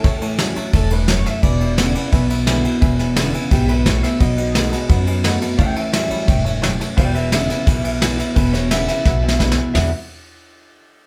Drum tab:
RD |x--x--x--x--x--x--x--x--|x--x--x--x--x--x--x--x--|x--x--x--x--x--x--x--x--|x--x--x--x--x--x--x--x--|
HH |------------------------|------------------------|------------------------|------------------------|
SD |------o-----------o--o--|------o-----------o-----|---o--o-----------o--o--|------o--o--------o--o--|
BD |o-----------o-----------|o-----------o-----------|o-----------o-----o-----|o-----------o-----------|

RD |x--x--x--x--x--x--x--x--|x--x--x--x--x--x--x--x--|x--x--x--x--------------|------------------------|
HH |------------------------|------------------------|------------------------|o-----------------------|
SD |------o-----------o--o--|------o--o--o-----o--o--|---o--o--o--o---o-o-o---|o-----------------------|
BD |o-----------o-----------|o-----------o-----------|o-----------o-----o-----|------------------------|